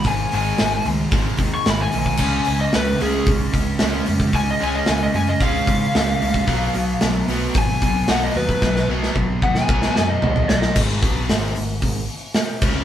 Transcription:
<<
  \new Staff \with { instrumentName = "Lead electric guitar" } { \time 4/4 \key gis \dorian \tempo 4 = 112 gis''8 gis''4 r4 r16 cis'''16 b''16 gis''8.~ | gis''8. dis''16 b'8 gis'8 r2 | gis''16 dis''16 gis''16 dis''16 gis''16 dis''16 gis''16 dis''16 eis''2~ | eis''4 r4 gis''4 fis''16 dis''16 b'8~ |
b'8 r4 fis''16 gis''4 dis''8. dis''8 | r1 | }
  \new Staff \with { instrumentName = "Overdriven electric guitar" } { \clef bass \time 4/4 \key gis \dorian <gis, dis gis>8 <gis, dis gis>8 <gis, dis gis>8 <gis, dis gis>8 <gis, dis gis>8 <gis, dis gis>8 <gis, dis gis>8 <gis, dis gis>8 | <cis gis cis'>8 <cis gis cis'>8 <cis gis cis'>8 <cis gis cis'>8 <cis gis cis'>8 <cis gis cis'>8 <cis gis cis'>8 <cis gis cis'>8 | <cis gis cis'>8 <cis gis cis'>8 <cis gis cis'>8 <cis gis cis'>8 <cis gis cis'>8 <cis gis cis'>8 <cis gis cis'>8 <cis gis cis'>8 | <b, fis b>8 <b, fis b>8 <b, fis b>8 <b, fis b>8 <b, fis b>8 <b, fis b>8 <b, fis b>8 <b, fis b>8 |
<b, fis b>8 <b, fis b>8 <b, fis b>8 <b, fis b>8 <b, fis b>8 <b, fis b>8 <b, fis b>8 <b, fis b>8 | <gis, dis gis>8 <b, fis b>8 <gis, dis gis>8 <gis, dis>8 <gis, dis>8 r4 <cis gis cis'>8 | }
  \new Staff \with { instrumentName = "Overdriven electric guitar" } { \clef bass \time 4/4 \key gis \dorian <gis, dis>8 <gis, dis gis>8 <gis, dis>8 <gis, dis>8 <gis, dis gis>8 <gis, dis>8 <gis, dis>8 <gis, dis>8 | <cis gis cis'>8 <cis gis>8 <cis gis>8 <cis gis cis'>8 <cis gis>8 <cis gis>8 <cis gis cis'>8 <cis gis>8 | <cis gis>8 <cis gis cis'>8 <cis gis>8 <cis gis>8 <cis gis cis'>8 <cis gis>8 <cis gis>8 <cis gis>8 | <b, fis b>8 <b, fis>8 <b, fis>8 <b, fis b>8 <b, fis>8 <b, fis>8 <b, fis b>8 <b, fis>8 |
<b, fis>8 <b, fis b>8 <b, fis>8 <b, fis>8 <b, fis b>8 <b, fis>8 <b, fis>8 <b, fis>8 | <gis, dis gis>8 <b, fis b>8 <gis, dis gis>8 <gis, dis>8 <gis, dis>8 r4 <cis gis cis'>8 | }
  \new Staff \with { instrumentName = "Overdriven electric guitar" } { \clef bass \time 4/4 \key gis \dorian <gis, dis>8 <gis, dis gis>8 <gis, dis>8 <gis, dis>8 <gis, dis gis>8 <gis, dis>8 <gis, dis>8 <gis, dis>8 | <cis gis cis'>8 <cis gis>8 <cis gis>8 <cis gis cis'>8 <cis gis>8 <cis gis>8 <cis gis cis'>8 <cis gis>8 | <cis gis>8 <cis gis cis'>8 <cis gis>8 <cis gis>8 <cis gis cis'>8 <cis gis>8 <cis gis>8 <cis gis>8 | <b, fis b>8 <b, fis>8 <b, fis>8 <b, fis b>8 <b, fis>8 <b, fis>8 <b, fis b>8 <b, fis>8 |
<b, fis>8 <b, fis b>8 <b, fis>8 <b, fis>8 <b, fis b>8 <b, fis>8 <b, fis>8 <b, fis>8 | r1 | }
  \new Staff \with { instrumentName = "Picked electric bass" } { \clef bass \time 4/4 \key gis \dorian gis,,8 gis,,8 gis,,8 cis,8 gis,,8 dis,8 gis,,8 b,,8 | cis,8 cis,8 cis,8 cis,8 b,,8 cis,8 cis,8 eis,8 | cis,8 cis,8 cis,8 fis,8 cis,8 gis,8 cis,8 cis,8 | b,,8 b,,8 b,,8 b,,8 gis,,8 b,,8 b,,8 dis,8 |
b,,8 b,,8 b,,8 dis,8 b,,8 fis,8 b,,8 b,,8 | gis,,8 b,,8 gis,,8 gis,,8 gis,,8 r4 cis,8 | }
  \new DrumStaff \with { instrumentName = "Drums" } \drummode { \time 4/4 <hho bd>8 hho8 <hho sn>8 hho8 <hho bd>8 <hho bd>8 <hho sn>8 hho16 bd16 | <cymc bd>8 hho8 <hho sn>8 hho8 <hho bd>8 <hho bd>8 <hho sn>8 hho16 bd16 | <hho bd>8 hho8 <hho sn>8 hho8 <hho bd>8 <hho bd>8 <hho sn>8 hho16 bd16 | <hho bd>8 hho8 <hho sn>8 hho8 <hho bd>8 <hho bd>8 <hho sn>8 hho16 bd16 |
<bd sn>16 sn8 sn16 bd8 bd16 sn16 bd16 sn16 sn8 tomfh16 tomfh16 sn16 sn16 | <cymc bd>8 <hho bd>8 <hho sn>8 hho8 <hho bd>8 hho8 <hho sn>8 <cymc bd>8 | }
>>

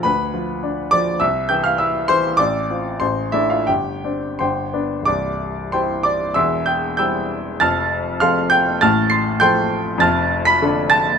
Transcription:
<<
  \new Staff \with { instrumentName = "Grand piano" } { \time 2/4 \key c \major \tempo 4 = 99 <b' b''>4. <d'' d'''>8 | <e'' e'''>8 <g'' g'''>16 <f'' f'''>16 <e'' e'''>8 <c'' c'''>8 | <d'' d'''>4 <c'' c'''>8 <e' e''>16 <f' f''>16 | <g' g''>4 <c'' g'' c'''>4 |
<d'' d'''>4 <c'' g'' c'''>8 <d'' d'''>8 | <e'' c''' e'''>8 <g'' g'''>8 <g'' e''' g'''>4 | <a'' f''' a'''>4 <f'' c''' f'''>8 <g'' g'''>8 | <a'' f''' a'''>8 <c''' c''''>8 <g'' c''' g'''>4 |
<a'' f''' a'''>8. <b'' b'''>8. <a'' a'''>8 | }
  \new Staff \with { instrumentName = "Grand piano" } { \clef bass \time 2/4 \key c \major d,8 f8 d'8 f8 | c,8 e8 e'8 e8 | a,,8 <c' f'>8 a,,8 <a d'>8 | g,,8 <c' d'>8 g,,8 <b d'>8 |
<c,, c,>4 <g c' e'>4 | <e,, e,>4 <g c' e'>4 | <f,, f,>4 <f c' a'>4 | <a,, a,>4 <f c' a'>4 |
<f,, f,>4 <d d' a'>4 | }
>>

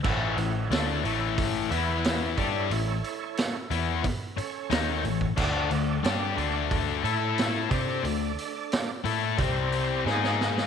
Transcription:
<<
  \new Staff \with { instrumentName = "Tonewheel organ" } { \time 4/4 \key a \mixolydian \tempo 4 = 90 << { r1 | r1 | r1 | r2. gis''8 dis''8 | } \\ { <e' a' cis''>2 r8 <e' b' e''>4 <e' a' cis''>8~ | <e' a' cis''>4. r4 <cis' a' cis''>4. | <d' a' d''>2 r8 <e' a' e''>4 <d' a' d''>8~ | <d' a' d''>4. r8 <c' g' c''>8 <c' g' c''>8 <dis' gis' dis''>4 | } >> }
  \new Staff \with { instrumentName = "Distorted electric guitar" } { \time 4/4 \key a \mixolydian <a, e a>8 <a, e>8 <d a d'>8 <a, e a>4 <e b e'>4 <g d' g'>8 | <a, e>8 r4 <e b e'>8 r4 <dis bes dis'>8 <a, e>8 | <d a d'>8 <d a>8 <g d' g'>8 <d a d'>4 <a e' a'>4 <c' g' c''>8 | <d a>8 r4 <a e' a'>8 <c g c'>4 <gis dis' gis'>4 | }
  \new Staff \with { instrumentName = "Picked electric bass" } { \clef bass \time 4/4 \key a \mixolydian a,,8 a,,8 d,8 a,,4 e,4 g,8 | a,,8 r4 e,8 r4 dis,8 a,,8 | d,8 d,8 g,8 d,4 a,4 c8 | d,8 r4 a,8 c,4 gis,4 | }
  \new DrumStaff \with { instrumentName = "Drums" } \drummode { \time 4/4 <cymc bd>8 hho8 <hho sn>8 hho8 <hho bd>8 hho8 <hho sn>8 <hho bd>8 | hho8 hho8 <hho sn>8 hho8 <hho bd>8 hho8 <hho sn>8 hho16 bd16 | <cymc bd>8 hho8 <hho sn>8 hho8 <hho bd>8 hho8 <hho sn>8 <hho bd>8 | hho8 hho8 <hho sn>8 hho8 <hho bd>8 hho8 sn16 sn16 sn16 sn16 | }
>>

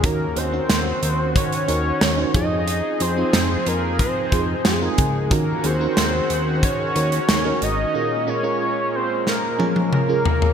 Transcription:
<<
  \new Staff \with { instrumentName = "Analog synth lead" } { \time 4/4 \key ees \dorian \tempo 4 = 91 bes'8 c''4. des''4. ees''8~ | ees''8 c''4 bes'8 c''4 aes'4 | bes'8 c''4. des''4. ees''8~ | ees''8 des''4 c''8 bes'4 bes'4 | }
  \new Staff \with { instrumentName = "FM electric piano" } { \time 4/4 \key ees \dorian <des' ees' ges' bes'>8 <des' ees' ges' c''>16 <des' ees' ges' c''>4~ <des' ees' ges' c''>16 r8 <des' ees' ges' bes'>8 r16 <des' ees' ges' c''>16 <c' ees' f' aes'>8~ | <c' ees' f' aes'>16 r16 <c' ees' f' aes'>16 <c' ees' f' aes'>4~ <c' ees' f' aes'>16 r8 <c' ees' f' aes'>8 r16 <c' ees' f' bes'>8 r16 | <des' ees' ges' bes'>8 <des' ees' ges' aes'>16 <des' ees' ges' bes'>4~ <des' ees' ges' bes'>16 r8 <des' ees' ges' bes'>8 r16 <des' ees' ges' bes'>8 r16 | <des' f' aes' bes'>8 <des' f' aes' bes'>16 <des' f' aes' bes'>4~ <des' f' aes' bes'>16 r8 <des' f' aes' des''>8 r16 <des' f' aes' bes'>8 r16 | }
  \new Staff \with { instrumentName = "FM electric piano" } { \clef bass \time 4/4 \key ees \dorian ees4. r2 r8 | r1 | ees4. r2 r8 | bes,4. r2 r8 | }
  \new Staff \with { instrumentName = "Analog synth pad" } { \time 4/4 \key ees \dorian <ees des' ges'>2.~ <ees des' ges'>8 <f ees' aes'>8~ | <f ees' aes'>1 | <ees des' ges'>1 | <aes bes>1 | }
  \new Staff \with { instrumentName = "Analog synth bass" } { \clef bass \time 4/4 \key ees \dorian ees,8 ees,8 ees,8 ees,8. r16 ees,8 ees,8 f,8~ | f,8 f,8 f,8 f,8. r16 f,8 f,8 des,8 | ees,8 ees,8 ees,8 ees,8. r16 ees,8 ees,8 aes,,8 | r1 | }
  \new DrumStaff \with { instrumentName = "Drums" } \drummode { \time 4/4 <hh bd>8 hh8 <hh sn>8 hh8 <hh bd>16 hh16 hh8 <hh sn>8 <hh bd>8 | hh8 hh8 <hh sn>8 hh8 <hh bd>8 <hh bd>8 <hh sn>8 <hh bd>8 | <hh bd>8 hh8 <hh sn>8 hh8 <hh bd>8 hh16 hh16 <hh sn>8 hh8 | r4 r4 sn8 tommh16 tommh16 toml8 tomfh16 tomfh16 | }
>>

